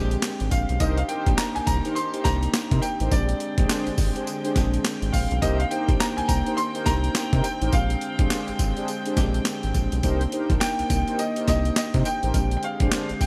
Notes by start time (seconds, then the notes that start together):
Already playing: A#1 D3 G#3 C4 D4 G4
0.11 closed hi-hat
0.22 snare, clap, closed hi-hat, tambourine
0.40 G#1, closed hi-hat
0.51 A#1 F5, kick, closed hi-hat, tambourine
0.69 B1, closed hi-hat
0.80 C2 D#3 A#3 C4 D4 D#4 G4 A#4 C5 D#5, kick, closed hi-hat, tambourine
0.97 F5, closed hi-hat
1.09 D#4 G4 A#4 C5 G5, closed hi-hat
1.26 A#1 A#3 D4 D#4 G4, kick, closed hi-hat
1.37 A#5, snare, clap, closed hi-hat, tambourine
1.55 C2 G#5, closed hi-hat
1.66 C2 A#5, kick, closed hi-hat, tambourine
1.85 D#4 G4 A#4 C5, closed hi-hat
1.95 C6, closed hi-hat, tambourine
2.13 D#4 G4 A#4 C5, closed hi-hat
2.24 C2 A#3 D4 D#4 G4 A#5, kick, snare, closed hi-hat, tambourine
2.43 closed hi-hat
2.54 snare, clap, closed hi-hat, tambourine
2.71 C3 D#4 G4 A#4 C5, kick, closed hi-hat
2.82 G5, closed hi-hat, tambourine
3.00 A1 D#4 G4 A#4 C5, closed hi-hat
3.11 A#1 D3 G#3 C4 D4 G4 D5 G5, kick, closed hi-hat, tambourine
3.29 closed hi-hat
3.40 closed hi-hat
3.58 A#1 G#3 C4 D4 G4 G#4 C5, kick, closed hi-hat
3.69 D4 G4 G#4 C5, snare, clap, closed hi-hat, tambourine
3.87 G#1, closed hi-hat
3.98 G#1, kick, open hi-hat, tambourine
4.16 D4 G4 G#4 C5, closed hi-hat
4.27 closed hi-hat, tambourine
4.44 D4 G4 G#4 C5, closed hi-hat
4.56 A#1 G#3 C4 D4 G#4, kick, snare, closed hi-hat, tambourine
4.74 closed hi-hat
4.85 snare, clap, closed hi-hat, tambourine
5.02 G#1, closed hi-hat
5.13 A#1 F5, kick, open hi-hat, tambourine
5.31 B1, closed hi-hat
5.42 C2 D#3 A#3 D4 D#4 G4 A#4 C5 D#5, kick, closed hi-hat, tambourine
5.55 E5
5.59 F5, closed hi-hat
5.71 D#4 G4 A#4 C5 G5, closed hi-hat
5.88 A#1 A#3 D4 D#4 G4, kick, closed hi-hat
6.00 A#5, snare, clap, closed hi-hat, tambourine
6.17 C2 G#5, closed hi-hat
6.28 C2 A#5, kick, closed hi-hat, tambourine
6.46 D#4 G4 A#4 C5, closed hi-hat
6.57 C6, closed hi-hat, tambourine
6.75 D#4 G4 A#4 C5, closed hi-hat
6.86 C2 A#3 D4 D#4 G4 A#5, kick, snare, closed hi-hat, tambourine
7.04 closed hi-hat
7.15 snare, clap, closed hi-hat, tambourine
7.33 C3 D#4 G4 A#4 C5, kick, closed hi-hat
7.44 G5, closed hi-hat, tambourine
7.62 A1 D#4 G4 A#4 C5, closed hi-hat
7.72 A#1 D3 G#3 C4 D4 G4 F5, kick, closed hi-hat, tambourine
7.90 closed hi-hat
8.01 closed hi-hat
8.19 A#1 G#3 C4 D4 G4 G#4 C5, kick, closed hi-hat
8.30 D4 G4 G#4 C5, snare, clap, closed hi-hat, tambourine
8.48 G#1, closed hi-hat
8.59 G#1, kick, closed hi-hat, tambourine
8.77 D4 G4 G#4 C5, closed hi-hat
8.88 closed hi-hat, tambourine
9.06 D4 G4 G#4 C5, closed hi-hat
9.16 A#1 G#3 C4 D4 G4, kick, snare, closed hi-hat, tambourine
9.34 closed hi-hat
9.45 snare, clap, closed hi-hat, tambourine
9.63 G#1, closed hi-hat
9.74 A#1, kick, closed hi-hat, tambourine
9.92 B1, closed hi-hat
10.03 C2 D#3 A#3 D4 D#4 G4 A#4 C5, kick, closed hi-hat, tambourine
10.21 closed hi-hat
10.32 D#4 G4 A#4 C5, closed hi-hat
10.50 A#1 A#3 D4 D#4 A#4, kick, closed hi-hat
10.60 G5, snare, clap, closed hi-hat, tambourine
10.79 C2, closed hi-hat
10.90 C2, kick, closed hi-hat, tambourine
11.07 D#4 G4 A#4 C5, closed hi-hat
11.19 D#5, closed hi-hat, tambourine
11.36 D#4 G4 A#4 C5, closed hi-hat
11.48 C2 A#3 D4 D#4 G4 D#5, kick, snare, closed hi-hat, tambourine
11.65 closed hi-hat
11.76 D#5, snare, clap, closed hi-hat, tambourine
11.94 C3 D#4 G4 A#4 C5, kick, closed hi-hat
12.05 G5, closed hi-hat, tambourine
12.23 A1 D#4 G4 A#4 C5, closed hi-hat
12.34 A#1 D3 G#3 C4 D4 G4, kick, closed hi-hat, tambourine
12.51 closed hi-hat
12.57 G5
12.63 F5, closed hi-hat
12.80 A#1 G#3 C4 D4 G4 G#4 C5, kick, closed hi-hat
12.91 D4 G4 G#4 C5, snare, clap, closed hi-hat, tambourine
13.09 G#1, closed hi-hat
13.21 G#1 G5, kick, open hi-hat, tambourine